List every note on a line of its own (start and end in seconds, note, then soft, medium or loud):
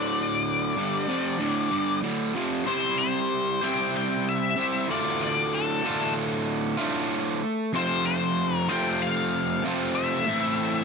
0.00 0.74 D2 medium
0.00 0.75 A2 medium
0.00 0.75 D3 loud
0.00 1.99 D5 medium
0.76 1.06 G2 medium
0.76 1.07 D3 medium
0.76 1.07 G3 medium
1.08 1.38 F2 medium
1.08 1.39 C3 medium
1.08 1.39 F3 medium
1.39 1.70 D2 medium
1.39 1.70 A2 medium
1.39 1.70 D3 medium
1.71 2.02 G2 medium
1.71 2.02 D3 medium
1.71 2.02 G3 medium
2.02 2.33 D2 medium
2.02 2.34 A2 medium
2.02 2.34 D3 medium
2.35 2.65 F2 medium
2.35 2.64 C3 medium
2.35 2.66 F3 medium
2.66 3.59 C3 medium
2.66 3.60 G3 medium
2.66 3.60 C4 medium
2.66 3.61 E4 medium
2.66 3.61 G4 medium
2.66 2.98 C5 medium
2.66 3.60 C5 medium
2.99 3.64 C5 loud
3.62 4.55 C3 medium
3.62 4.56 G3 medium
3.62 4.56 C4 medium
3.62 4.56 E4 medium
3.62 4.56 G4 medium
3.62 4.55 C5 medium
3.62 3.92 G5 medium
3.97 4.28 G5 medium
4.29 4.86 E5 medium
4.56 4.86 C3 medium
4.56 4.87 G3 medium
4.56 4.87 C4 medium
4.56 4.88 E4 medium
4.56 4.88 G4 medium
4.60 4.88 C5 medium
4.88 5.82 D2 loud
4.88 5.82 A2 medium
4.88 5.83 D3 loud
4.88 5.86 A3 loud
4.88 5.86 F4 loud
4.88 5.21 D5 medium
5.22 5.54 D5 medium
5.54 6.13 A4 medium
5.83 6.77 D2 medium
5.83 6.77 A2 medium
5.83 6.78 D3 medium
5.83 6.78 A3 medium
5.83 6.76 F4 medium
6.77 7.42 D2 medium
6.77 7.41 A2 medium
6.77 7.41 D3 medium
6.77 7.75 A3 medium
6.77 7.40 F4 medium
7.73 8.67 F2 medium
7.73 8.67 C3 medium
7.73 8.68 F3 medium
7.73 8.70 A3 medium
7.73 8.69 C4 medium
7.73 8.67 F4 loud
7.73 8.04 C5 medium
8.07 8.57 C5 medium
8.57 8.72 A#4 medium
8.69 9.62 F2 medium
8.69 9.63 C3 medium
8.69 9.63 F3 medium
8.69 9.63 A3 medium
8.69 9.63 C4 medium
8.69 9.62 F4 medium
8.69 9.02 G5 loud
9.02 9.61 F5 medium
9.63 10.25 F2 medium
9.63 10.26 C3 medium
9.63 10.26 F3 medium
9.63 10.27 A3 medium
9.63 10.27 C4 medium
9.67 10.27 F4 loud
9.95 10.84 E5 loud
10.26 10.84 A2 medium
10.26 10.84 E3 medium
10.26 10.84 A3 loud
10.26 10.84 C4 medium
10.26 10.84 E4 loud
10.26 10.84 A4 loud